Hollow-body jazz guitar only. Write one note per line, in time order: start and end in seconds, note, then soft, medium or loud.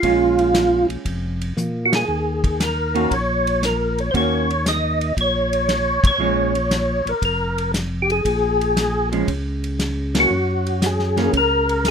0.03 1.48 G#3 medium
0.03 1.48 C#4 medium
0.03 1.48 F4 medium
2.94 3.09 D#3 medium
2.94 3.10 A#3 medium
2.94 3.10 C#4 medium
2.94 3.10 F#4 medium
4.14 4.46 D#3 soft
4.14 4.46 A#3 medium
4.14 4.46 C#4 medium
4.14 4.46 F#4 medium
6.20 6.52 F3 medium
6.20 6.52 G#3 medium
6.20 6.52 C#4 medium
9.12 9.26 F3 medium
9.12 9.27 G#3 medium
9.12 9.27 C#4 medium
10.15 10.29 E3 soft
10.15 10.29 A#3 medium
10.15 10.30 C#4 medium
11.17 11.32 E3 medium
11.17 11.32 A#3 medium
11.17 11.33 C#4 medium